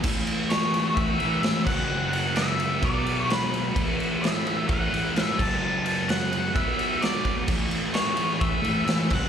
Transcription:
0.02 distorted electric guitar A2 E3, kick, crash
0.08 distorted electric guitar A3
0.27 ride
0.50 lead electric guitar C#5, snare, ride
0.74 ride
0.95 lead electric guitar E5, kick, ride
1.18 distorted electric guitar E3 A3, ride
1.23 distorted electric guitar A2
1.41 distorted electric guitar A2 E3, snare, ride
1.46 distorted electric guitar A3
1.64 distorted electric guitar F#2 C#3, lead electric guitar F#5, kick, crash
1.69 distorted electric guitar F#3
2.12 lead electric guitar F#5, ride
2.36 lead electric guitar E5, snare, ride
2.60 ride
2.81 distorted electric guitar B2 F#3, lead electric guitar D5, kick, ride
2.85 distorted electric guitar B3
3.07 ride
3.19 lead electric guitar C#5
3.30 lead electric guitar B4, snare, ride
3.54 ride
3.73 distorted electric guitar A2 E3, kick, ride
3.79 distorted electric guitar A3
4.00 ride
4.22 lead electric guitar E5, snare, ride
4.47 ride
4.68 lead electric guitar F#5, kick, ride
4.90 distorted electric guitar E3 A3, ride
4.95 distorted electric guitar A2
5.14 distorted electric guitar A2 E3, snare, ride
5.19 distorted electric guitar A3, lead electric guitar E5
5.36 distorted electric guitar F#2 C#3, lead electric guitar A5, kick
5.40 distorted electric guitar F#3, crash
5.85 lead electric guitar A5, ride
6.09 lead electric guitar F#5, snare, ride
6.33 ride
6.53 distorted electric guitar B2 F#3, lead electric guitar E5, kick, ride
6.57 distorted electric guitar B3
6.79 ride
7.01 lead electric guitar D5, snare, ride
7.25 kick, ride
7.46 distorted electric guitar A2 E3, kick, crash
7.51 distorted electric guitar A3
7.71 ride
7.94 lead electric guitar C#5, snare, ride
8.17 ride
8.41 lead electric guitar E5, kick, ride
8.62 distorted electric guitar E3 A3, ride
8.67 distorted electric guitar A2
8.85 distorted electric guitar A2 E3, snare, ride
8.90 distorted electric guitar A3
9.09 distorted electric guitar F#2 C#3, kick, crash
9.14 distorted electric guitar F#3, lead electric guitar F#5

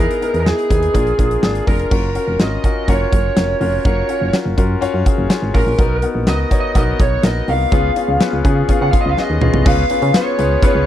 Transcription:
Already playing: grand piano B3 D#4 E4 G#4
0.00 lead electric guitar A#4
0.11 closed hi-hat
0.21 grand piano B3 D#4 E4 A#4, closed hi-hat
0.34 fm bass E2, closed hi-hat
0.40 lead electric guitar A#4
0.45 grand piano B3 D#4 E4 G#4, lead electric guitar G#4, snare
0.59 closed hi-hat
0.70 fm bass D#2, grand piano B3 D#4 E4 G#4, kick, closed hi-hat
0.83 closed hi-hat
0.94 fm bass A#1, grand piano A#3 D4 F4 G#4, kick, closed hi-hat
1.07 closed hi-hat
1.18 fm bass A#1, grand piano A#3 D4 F4 G#4, kick, closed hi-hat
1.31 closed hi-hat
1.42 fm bass G#1, grand piano A#3 D4 F4 G#4, snare
1.55 closed hi-hat
1.66 fm bass F1, grand piano A#3 D4 F4 A#4, lead electric guitar A#4, kick, open hi-hat
1.79 closed hi-hat
1.91 fm bass F#1, grand piano C#4 F4 F#4 A#4, kick, crash
2.15 grand piano C#4 F4 F#4 A#4, closed hi-hat
2.28 fm bass F1
2.39 fm bass G#1, grand piano C#4 F4 F#4 A#4, lead electric guitar D#5, snare, closed hi-hat
2.64 grand piano C#4 F4 F#4 A#4, kick, closed hi-hat
2.88 fm bass F#1, grand piano C#4 F4 F#4 A#4, lead electric guitar C#5, kick, closed hi-hat
3.12 fm bass F#1, grand piano C#4 F4 F#4 A#4, kick, closed hi-hat
3.36 fm bass F1, grand piano C#4 F4 F#4 A#4, snare, closed hi-hat
3.61 fm bass F1, grand piano C#4 F4 F#4 A#4, open hi-hat
3.85 fm bass F#1, grand piano C#4 F4 F#4 A#4, lead electric guitar C#5, kick, closed hi-hat
4.09 grand piano C#4 F4 F#4 A#4, closed hi-hat
4.21 fm bass F#1
4.33 grand piano C#4 F4 F#4 A#4, snare, closed hi-hat
4.46 fm bass F#1
4.57 fm bass F#2, grand piano C#4 F4 F#4 A#4, kick, closed hi-hat
4.81 fm bass F#2, grand piano C#4 F4 F#4 C#5, closed hi-hat
4.94 fm bass F#2
5.06 grand piano C#4 F4 F#4 G#4, kick, closed hi-hat
5.18 fm bass F#1
5.29 grand piano C#4 F4 F#4 C#5, snare, closed hi-hat
5.42 fm bass G#1
5.54 fm bass A1, grand piano C#4 F4 F#4 A#4, lead electric guitar A#4, kick, open hi-hat
5.66 fm bass A#1
5.78 fm bass B1, grand piano B3 D#4 F#4 A#4, kick, closed hi-hat
6.02 grand piano B3 D#4 F#4 A#4, closed hi-hat
6.15 fm bass A#1
6.27 fm bass C#2, grand piano B3 D#4 F#4 A#4, lead electric guitar D#5, snare, closed hi-hat
6.50 grand piano B3 D#4 F#4 C#5, kick, closed hi-hat
6.61 lead electric guitar D#5
6.75 fm bass B1, grand piano B3 D#4 F#4 A#4, lead electric guitar D#5, kick, closed hi-hat
6.99 fm bass B1, grand piano B3 D#4 F#4 A#4, lead electric guitar C#5, kick, closed hi-hat
7.23 fm bass A#1, grand piano B3 D#4 F#4 A#4, lead electric guitar D#5, snare, closed hi-hat
7.48 fm bass C2, grand piano B3 D#4 F#4 A#4, lead electric guitar F5, open hi-hat
7.72 fm bass C#2, grand piano B3 C#4 F4 G#4, kick, closed hi-hat
7.96 grand piano B3 C#4 F4 G#4, closed hi-hat
8.08 fm bass C#2
8.20 grand piano B3 C#4 F4 B4, snare, closed hi-hat
8.33 fm bass C#2
8.44 fm bass C#3, grand piano B3 C#4 F4 G#4, kick, closed hi-hat
8.69 fm bass C#3, grand piano B3 C#4 F4 G#4, kick, closed hi-hat
8.81 fm bass C#3, lead electric guitar F#5
8.91 grand piano B3 C#4 F4 G#4, lead electric guitar F5, kick, closed hi-hat
9.01 lead electric guitar D#5
9.06 fm bass C#2
9.10 lead electric guitar F5
9.17 grand piano B3 C#4 F4 G#4, lead electric guitar D#5, snare
9.30 fm bass D#2
9.41 fm bass B1, grand piano B3 C#4 F4 G#4, mid tom
9.54 fm bass C2, floor tom
9.65 fm bass C#2, grand piano B3 C#4 F4 G#4 B4, lead electric guitar F5, kick, crash
9.90 grand piano B3 C#4 F4 G#4 B4, closed hi-hat
10.02 fm bass C#3, closed hi-hat
10.13 grand piano B3 C#4 F4 G#4 B4, lead electric guitar C#5, snare, closed hi-hat, tambourine
10.38 fm bass C#2, grand piano B3 C#4 F4 G#4 B4, closed hi-hat
10.62 grand piano B3 C#4 F4 G#4 B4, lead electric guitar C#5, kick, closed hi-hat
10.75 fm bass C#2

